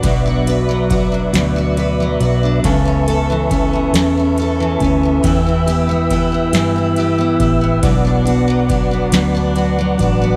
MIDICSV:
0, 0, Header, 1, 6, 480
1, 0, Start_track
1, 0, Key_signature, 2, "minor"
1, 0, Tempo, 865801
1, 18, Time_signature, 6, 3, 24, 8
1, 5746, End_track
2, 0, Start_track
2, 0, Title_t, "Tonewheel organ"
2, 0, Program_c, 0, 16
2, 0, Note_on_c, 0, 71, 68
2, 0, Note_on_c, 0, 74, 57
2, 0, Note_on_c, 0, 86, 67
2, 21, Note_on_c, 0, 76, 61
2, 1439, Note_off_c, 0, 71, 0
2, 1440, Note_off_c, 0, 74, 0
2, 1440, Note_off_c, 0, 86, 0
2, 1449, Note_off_c, 0, 76, 0
2, 1466, Note_on_c, 0, 76, 70
2, 1469, Note_on_c, 0, 81, 62
2, 1469, Note_on_c, 0, 85, 76
2, 1470, Note_on_c, 0, 71, 66
2, 2892, Note_off_c, 0, 81, 0
2, 2892, Note_off_c, 0, 85, 0
2, 2908, Note_on_c, 0, 88, 78
2, 2911, Note_on_c, 0, 79, 62
2, 4322, Note_off_c, 0, 76, 0
2, 4331, Note_off_c, 0, 88, 0
2, 4332, Note_off_c, 0, 79, 0
2, 4338, Note_on_c, 0, 78, 58
2, 4339, Note_on_c, 0, 74, 61
2, 4339, Note_on_c, 0, 86, 75
2, 5746, Note_off_c, 0, 71, 0
2, 5746, Note_off_c, 0, 74, 0
2, 5746, Note_off_c, 0, 78, 0
2, 5746, Note_off_c, 0, 86, 0
2, 5746, End_track
3, 0, Start_track
3, 0, Title_t, "Steel-string acoustic guitar"
3, 0, Program_c, 1, 25
3, 16, Note_on_c, 1, 47, 89
3, 21, Note_on_c, 1, 54, 81
3, 21, Note_on_c, 1, 59, 83
3, 24, Note_on_c, 1, 62, 94
3, 27, Note_on_c, 1, 66, 90
3, 249, Note_off_c, 1, 66, 0
3, 255, Note_on_c, 1, 66, 59
3, 258, Note_off_c, 1, 47, 0
3, 258, Note_off_c, 1, 62, 0
3, 260, Note_off_c, 1, 54, 0
3, 260, Note_off_c, 1, 59, 0
3, 264, Note_on_c, 1, 62, 54
3, 271, Note_on_c, 1, 59, 55
3, 497, Note_off_c, 1, 59, 0
3, 497, Note_on_c, 1, 54, 65
3, 498, Note_off_c, 1, 66, 0
3, 502, Note_off_c, 1, 62, 0
3, 504, Note_on_c, 1, 59, 66
3, 509, Note_on_c, 1, 62, 74
3, 513, Note_on_c, 1, 66, 75
3, 732, Note_off_c, 1, 66, 0
3, 734, Note_off_c, 1, 62, 0
3, 737, Note_off_c, 1, 59, 0
3, 738, Note_on_c, 1, 66, 74
3, 739, Note_off_c, 1, 54, 0
3, 741, Note_on_c, 1, 62, 67
3, 744, Note_on_c, 1, 59, 59
3, 745, Note_on_c, 1, 54, 65
3, 748, Note_on_c, 1, 47, 59
3, 970, Note_off_c, 1, 54, 0
3, 976, Note_off_c, 1, 59, 0
3, 977, Note_on_c, 1, 54, 59
3, 980, Note_off_c, 1, 66, 0
3, 981, Note_off_c, 1, 62, 0
3, 983, Note_on_c, 1, 59, 65
3, 985, Note_off_c, 1, 47, 0
3, 988, Note_on_c, 1, 62, 69
3, 992, Note_on_c, 1, 66, 77
3, 1212, Note_off_c, 1, 66, 0
3, 1219, Note_off_c, 1, 54, 0
3, 1219, Note_on_c, 1, 66, 58
3, 1221, Note_off_c, 1, 62, 0
3, 1223, Note_off_c, 1, 59, 0
3, 1228, Note_on_c, 1, 62, 50
3, 1233, Note_on_c, 1, 59, 47
3, 1461, Note_off_c, 1, 59, 0
3, 1461, Note_off_c, 1, 66, 0
3, 1462, Note_on_c, 1, 49, 99
3, 1464, Note_on_c, 1, 52, 91
3, 1465, Note_off_c, 1, 62, 0
3, 1468, Note_on_c, 1, 59, 92
3, 1469, Note_on_c, 1, 61, 88
3, 1471, Note_on_c, 1, 69, 99
3, 1691, Note_off_c, 1, 69, 0
3, 1697, Note_on_c, 1, 69, 66
3, 1700, Note_off_c, 1, 61, 0
3, 1703, Note_off_c, 1, 49, 0
3, 1703, Note_off_c, 1, 52, 0
3, 1705, Note_off_c, 1, 59, 0
3, 1706, Note_on_c, 1, 61, 53
3, 1712, Note_on_c, 1, 59, 53
3, 1937, Note_off_c, 1, 59, 0
3, 1937, Note_on_c, 1, 52, 71
3, 1940, Note_off_c, 1, 61, 0
3, 1940, Note_off_c, 1, 69, 0
3, 1943, Note_on_c, 1, 59, 71
3, 1947, Note_on_c, 1, 61, 66
3, 1952, Note_on_c, 1, 69, 66
3, 2175, Note_off_c, 1, 69, 0
3, 2179, Note_off_c, 1, 61, 0
3, 2180, Note_off_c, 1, 52, 0
3, 2181, Note_off_c, 1, 59, 0
3, 2182, Note_on_c, 1, 69, 67
3, 2186, Note_on_c, 1, 61, 70
3, 2187, Note_on_c, 1, 59, 60
3, 2189, Note_on_c, 1, 52, 57
3, 2192, Note_on_c, 1, 49, 61
3, 2412, Note_off_c, 1, 52, 0
3, 2418, Note_on_c, 1, 52, 63
3, 2419, Note_off_c, 1, 59, 0
3, 2421, Note_off_c, 1, 61, 0
3, 2423, Note_off_c, 1, 69, 0
3, 2425, Note_on_c, 1, 59, 65
3, 2428, Note_off_c, 1, 49, 0
3, 2428, Note_on_c, 1, 61, 78
3, 2434, Note_on_c, 1, 69, 72
3, 2651, Note_off_c, 1, 69, 0
3, 2658, Note_on_c, 1, 69, 60
3, 2660, Note_off_c, 1, 61, 0
3, 2661, Note_off_c, 1, 52, 0
3, 2664, Note_off_c, 1, 59, 0
3, 2667, Note_on_c, 1, 61, 56
3, 2672, Note_on_c, 1, 59, 51
3, 2894, Note_off_c, 1, 59, 0
3, 2898, Note_on_c, 1, 52, 87
3, 2901, Note_off_c, 1, 69, 0
3, 2901, Note_on_c, 1, 59, 90
3, 2904, Note_off_c, 1, 61, 0
3, 2906, Note_on_c, 1, 64, 89
3, 2909, Note_on_c, 1, 67, 86
3, 3132, Note_off_c, 1, 67, 0
3, 3139, Note_on_c, 1, 67, 57
3, 3140, Note_off_c, 1, 64, 0
3, 3141, Note_off_c, 1, 52, 0
3, 3142, Note_off_c, 1, 59, 0
3, 3146, Note_on_c, 1, 64, 57
3, 3153, Note_on_c, 1, 59, 43
3, 3379, Note_off_c, 1, 59, 0
3, 3379, Note_on_c, 1, 52, 69
3, 3381, Note_off_c, 1, 67, 0
3, 3383, Note_off_c, 1, 64, 0
3, 3386, Note_on_c, 1, 59, 66
3, 3390, Note_on_c, 1, 64, 67
3, 3393, Note_on_c, 1, 67, 78
3, 3611, Note_off_c, 1, 67, 0
3, 3616, Note_off_c, 1, 64, 0
3, 3618, Note_on_c, 1, 67, 75
3, 3619, Note_off_c, 1, 59, 0
3, 3621, Note_off_c, 1, 52, 0
3, 3623, Note_on_c, 1, 64, 56
3, 3626, Note_on_c, 1, 59, 59
3, 3629, Note_on_c, 1, 52, 67
3, 3855, Note_off_c, 1, 52, 0
3, 3859, Note_off_c, 1, 59, 0
3, 3860, Note_off_c, 1, 67, 0
3, 3862, Note_on_c, 1, 52, 65
3, 3863, Note_off_c, 1, 64, 0
3, 3865, Note_on_c, 1, 59, 69
3, 3871, Note_on_c, 1, 64, 74
3, 3874, Note_on_c, 1, 67, 64
3, 4095, Note_off_c, 1, 67, 0
3, 4101, Note_off_c, 1, 64, 0
3, 4101, Note_on_c, 1, 67, 55
3, 4102, Note_off_c, 1, 52, 0
3, 4104, Note_off_c, 1, 59, 0
3, 4108, Note_on_c, 1, 64, 52
3, 4115, Note_on_c, 1, 59, 45
3, 4337, Note_off_c, 1, 59, 0
3, 4337, Note_on_c, 1, 47, 73
3, 4340, Note_on_c, 1, 54, 85
3, 4342, Note_off_c, 1, 67, 0
3, 4343, Note_on_c, 1, 59, 77
3, 4345, Note_off_c, 1, 64, 0
3, 4347, Note_on_c, 1, 62, 94
3, 4348, Note_on_c, 1, 66, 90
3, 4571, Note_off_c, 1, 66, 0
3, 4578, Note_on_c, 1, 66, 52
3, 4579, Note_off_c, 1, 62, 0
3, 4580, Note_off_c, 1, 47, 0
3, 4581, Note_off_c, 1, 54, 0
3, 4583, Note_off_c, 1, 59, 0
3, 4585, Note_on_c, 1, 62, 52
3, 4592, Note_on_c, 1, 59, 47
3, 4814, Note_off_c, 1, 59, 0
3, 4814, Note_on_c, 1, 54, 66
3, 4819, Note_off_c, 1, 62, 0
3, 4820, Note_off_c, 1, 66, 0
3, 4820, Note_on_c, 1, 59, 74
3, 4826, Note_on_c, 1, 62, 74
3, 4829, Note_on_c, 1, 66, 82
3, 5051, Note_off_c, 1, 66, 0
3, 5054, Note_off_c, 1, 62, 0
3, 5055, Note_off_c, 1, 59, 0
3, 5057, Note_on_c, 1, 66, 73
3, 5058, Note_off_c, 1, 54, 0
3, 5061, Note_on_c, 1, 62, 68
3, 5062, Note_on_c, 1, 59, 63
3, 5066, Note_on_c, 1, 54, 62
3, 5067, Note_on_c, 1, 47, 66
3, 5287, Note_off_c, 1, 54, 0
3, 5292, Note_off_c, 1, 59, 0
3, 5293, Note_on_c, 1, 54, 57
3, 5298, Note_off_c, 1, 62, 0
3, 5299, Note_off_c, 1, 66, 0
3, 5299, Note_on_c, 1, 59, 65
3, 5304, Note_off_c, 1, 47, 0
3, 5305, Note_on_c, 1, 62, 63
3, 5309, Note_on_c, 1, 66, 77
3, 5525, Note_off_c, 1, 66, 0
3, 5532, Note_on_c, 1, 66, 59
3, 5534, Note_off_c, 1, 62, 0
3, 5537, Note_off_c, 1, 54, 0
3, 5540, Note_off_c, 1, 59, 0
3, 5541, Note_on_c, 1, 62, 60
3, 5547, Note_on_c, 1, 59, 51
3, 5746, Note_off_c, 1, 59, 0
3, 5746, Note_off_c, 1, 62, 0
3, 5746, Note_off_c, 1, 66, 0
3, 5746, End_track
4, 0, Start_track
4, 0, Title_t, "Steel-string acoustic guitar"
4, 0, Program_c, 2, 25
4, 0, Note_on_c, 2, 54, 66
4, 0, Note_on_c, 2, 62, 50
4, 0, Note_on_c, 2, 66, 60
4, 0, Note_on_c, 2, 71, 75
4, 15, Note_on_c, 2, 47, 79
4, 135, Note_off_c, 2, 66, 0
4, 142, Note_on_c, 2, 66, 63
4, 262, Note_off_c, 2, 71, 0
4, 264, Note_on_c, 2, 71, 72
4, 375, Note_off_c, 2, 54, 0
4, 381, Note_on_c, 2, 54, 76
4, 491, Note_off_c, 2, 66, 0
4, 498, Note_on_c, 2, 66, 65
4, 614, Note_off_c, 2, 62, 0
4, 620, Note_on_c, 2, 62, 57
4, 733, Note_off_c, 2, 47, 0
4, 740, Note_on_c, 2, 47, 77
4, 858, Note_off_c, 2, 66, 0
4, 865, Note_on_c, 2, 66, 72
4, 981, Note_off_c, 2, 71, 0
4, 983, Note_on_c, 2, 71, 64
4, 1102, Note_off_c, 2, 54, 0
4, 1110, Note_on_c, 2, 54, 67
4, 1216, Note_off_c, 2, 66, 0
4, 1223, Note_on_c, 2, 66, 65
4, 1342, Note_off_c, 2, 62, 0
4, 1348, Note_on_c, 2, 62, 59
4, 1462, Note_off_c, 2, 47, 0
4, 1464, Note_on_c, 2, 49, 66
4, 1511, Note_off_c, 2, 66, 0
4, 1513, Note_off_c, 2, 62, 0
4, 1514, Note_off_c, 2, 54, 0
4, 1582, Note_on_c, 2, 61, 62
4, 1599, Note_off_c, 2, 71, 0
4, 1706, Note_on_c, 2, 69, 74
4, 1829, Note_on_c, 2, 52, 65
4, 1941, Note_off_c, 2, 61, 0
4, 1947, Note_on_c, 2, 61, 63
4, 2070, Note_on_c, 2, 59, 61
4, 2184, Note_off_c, 2, 49, 0
4, 2194, Note_on_c, 2, 49, 69
4, 2305, Note_off_c, 2, 61, 0
4, 2314, Note_on_c, 2, 61, 66
4, 2425, Note_off_c, 2, 69, 0
4, 2437, Note_on_c, 2, 69, 68
4, 2550, Note_off_c, 2, 52, 0
4, 2552, Note_on_c, 2, 52, 69
4, 2667, Note_off_c, 2, 61, 0
4, 2673, Note_on_c, 2, 61, 61
4, 2788, Note_off_c, 2, 59, 0
4, 2790, Note_on_c, 2, 59, 55
4, 2906, Note_off_c, 2, 52, 0
4, 2908, Note_on_c, 2, 52, 71
4, 2956, Note_off_c, 2, 61, 0
4, 2957, Note_off_c, 2, 49, 0
4, 2958, Note_off_c, 2, 69, 0
4, 3029, Note_on_c, 2, 64, 62
4, 3146, Note_on_c, 2, 67, 75
4, 3263, Note_off_c, 2, 59, 0
4, 3265, Note_on_c, 2, 59, 70
4, 3380, Note_off_c, 2, 64, 0
4, 3387, Note_on_c, 2, 64, 69
4, 3502, Note_off_c, 2, 59, 0
4, 3504, Note_on_c, 2, 59, 60
4, 3621, Note_off_c, 2, 52, 0
4, 3628, Note_on_c, 2, 52, 74
4, 3739, Note_off_c, 2, 64, 0
4, 3746, Note_on_c, 2, 64, 64
4, 3860, Note_off_c, 2, 67, 0
4, 3866, Note_on_c, 2, 67, 69
4, 3981, Note_off_c, 2, 59, 0
4, 3983, Note_on_c, 2, 59, 68
4, 4096, Note_off_c, 2, 64, 0
4, 4103, Note_on_c, 2, 64, 57
4, 4218, Note_off_c, 2, 59, 0
4, 4220, Note_on_c, 2, 59, 57
4, 4340, Note_on_c, 2, 47, 72
4, 4390, Note_off_c, 2, 64, 0
4, 4392, Note_off_c, 2, 67, 0
4, 4393, Note_off_c, 2, 52, 0
4, 4461, Note_on_c, 2, 62, 60
4, 4576, Note_on_c, 2, 66, 67
4, 4700, Note_on_c, 2, 54, 77
4, 4812, Note_off_c, 2, 62, 0
4, 4818, Note_on_c, 2, 62, 62
4, 4939, Note_off_c, 2, 59, 0
4, 4941, Note_on_c, 2, 59, 62
4, 5052, Note_off_c, 2, 47, 0
4, 5059, Note_on_c, 2, 47, 81
4, 5175, Note_off_c, 2, 62, 0
4, 5181, Note_on_c, 2, 62, 70
4, 5294, Note_off_c, 2, 66, 0
4, 5301, Note_on_c, 2, 66, 69
4, 5418, Note_off_c, 2, 54, 0
4, 5425, Note_on_c, 2, 54, 69
4, 5539, Note_off_c, 2, 62, 0
4, 5546, Note_on_c, 2, 62, 61
4, 5661, Note_off_c, 2, 59, 0
4, 5663, Note_on_c, 2, 59, 56
4, 5746, Note_off_c, 2, 47, 0
4, 5746, Note_off_c, 2, 54, 0
4, 5746, Note_off_c, 2, 59, 0
4, 5746, Note_off_c, 2, 62, 0
4, 5746, Note_off_c, 2, 66, 0
4, 5746, End_track
5, 0, Start_track
5, 0, Title_t, "Fingered electric bass"
5, 0, Program_c, 3, 33
5, 19, Note_on_c, 3, 35, 111
5, 719, Note_off_c, 3, 35, 0
5, 739, Note_on_c, 3, 38, 92
5, 1199, Note_off_c, 3, 38, 0
5, 1222, Note_on_c, 3, 35, 106
5, 1448, Note_off_c, 3, 35, 0
5, 1463, Note_on_c, 3, 37, 105
5, 2161, Note_off_c, 3, 37, 0
5, 2180, Note_on_c, 3, 40, 82
5, 2640, Note_off_c, 3, 40, 0
5, 2663, Note_on_c, 3, 38, 84
5, 2889, Note_off_c, 3, 38, 0
5, 2904, Note_on_c, 3, 40, 91
5, 3601, Note_off_c, 3, 40, 0
5, 3620, Note_on_c, 3, 43, 72
5, 4079, Note_off_c, 3, 43, 0
5, 4102, Note_on_c, 3, 33, 87
5, 4327, Note_off_c, 3, 33, 0
5, 4341, Note_on_c, 3, 35, 113
5, 5039, Note_off_c, 3, 35, 0
5, 5057, Note_on_c, 3, 38, 99
5, 5516, Note_off_c, 3, 38, 0
5, 5538, Note_on_c, 3, 33, 95
5, 5746, Note_off_c, 3, 33, 0
5, 5746, End_track
6, 0, Start_track
6, 0, Title_t, "Drums"
6, 19, Note_on_c, 9, 51, 69
6, 20, Note_on_c, 9, 36, 111
6, 74, Note_off_c, 9, 51, 0
6, 75, Note_off_c, 9, 36, 0
6, 262, Note_on_c, 9, 51, 50
6, 317, Note_off_c, 9, 51, 0
6, 502, Note_on_c, 9, 36, 89
6, 502, Note_on_c, 9, 51, 51
6, 557, Note_off_c, 9, 51, 0
6, 558, Note_off_c, 9, 36, 0
6, 742, Note_on_c, 9, 51, 62
6, 750, Note_on_c, 9, 38, 108
6, 797, Note_off_c, 9, 51, 0
6, 806, Note_off_c, 9, 38, 0
6, 983, Note_on_c, 9, 51, 40
6, 1038, Note_off_c, 9, 51, 0
6, 1223, Note_on_c, 9, 51, 40
6, 1278, Note_off_c, 9, 51, 0
6, 1464, Note_on_c, 9, 36, 113
6, 1464, Note_on_c, 9, 51, 73
6, 1520, Note_off_c, 9, 36, 0
6, 1520, Note_off_c, 9, 51, 0
6, 1706, Note_on_c, 9, 51, 51
6, 1762, Note_off_c, 9, 51, 0
6, 1946, Note_on_c, 9, 36, 92
6, 1946, Note_on_c, 9, 51, 50
6, 2001, Note_off_c, 9, 36, 0
6, 2001, Note_off_c, 9, 51, 0
6, 2184, Note_on_c, 9, 51, 73
6, 2192, Note_on_c, 9, 38, 102
6, 2239, Note_off_c, 9, 51, 0
6, 2248, Note_off_c, 9, 38, 0
6, 2426, Note_on_c, 9, 51, 40
6, 2482, Note_off_c, 9, 51, 0
6, 2663, Note_on_c, 9, 51, 36
6, 2665, Note_on_c, 9, 36, 75
6, 2719, Note_off_c, 9, 51, 0
6, 2720, Note_off_c, 9, 36, 0
6, 2904, Note_on_c, 9, 51, 68
6, 2905, Note_on_c, 9, 36, 117
6, 2960, Note_off_c, 9, 36, 0
6, 2960, Note_off_c, 9, 51, 0
6, 3147, Note_on_c, 9, 51, 52
6, 3203, Note_off_c, 9, 51, 0
6, 3384, Note_on_c, 9, 36, 83
6, 3385, Note_on_c, 9, 51, 52
6, 3440, Note_off_c, 9, 36, 0
6, 3440, Note_off_c, 9, 51, 0
6, 3621, Note_on_c, 9, 51, 69
6, 3629, Note_on_c, 9, 38, 97
6, 3676, Note_off_c, 9, 51, 0
6, 3685, Note_off_c, 9, 38, 0
6, 3861, Note_on_c, 9, 51, 42
6, 3916, Note_off_c, 9, 51, 0
6, 4102, Note_on_c, 9, 51, 42
6, 4103, Note_on_c, 9, 36, 88
6, 4158, Note_off_c, 9, 36, 0
6, 4158, Note_off_c, 9, 51, 0
6, 4341, Note_on_c, 9, 51, 73
6, 4342, Note_on_c, 9, 36, 123
6, 4396, Note_off_c, 9, 51, 0
6, 4397, Note_off_c, 9, 36, 0
6, 4584, Note_on_c, 9, 51, 45
6, 4639, Note_off_c, 9, 51, 0
6, 4822, Note_on_c, 9, 36, 96
6, 4822, Note_on_c, 9, 51, 46
6, 4877, Note_off_c, 9, 51, 0
6, 4878, Note_off_c, 9, 36, 0
6, 5057, Note_on_c, 9, 51, 71
6, 5065, Note_on_c, 9, 38, 104
6, 5112, Note_off_c, 9, 51, 0
6, 5121, Note_off_c, 9, 38, 0
6, 5298, Note_on_c, 9, 51, 39
6, 5354, Note_off_c, 9, 51, 0
6, 5539, Note_on_c, 9, 51, 42
6, 5541, Note_on_c, 9, 36, 78
6, 5595, Note_off_c, 9, 51, 0
6, 5596, Note_off_c, 9, 36, 0
6, 5746, End_track
0, 0, End_of_file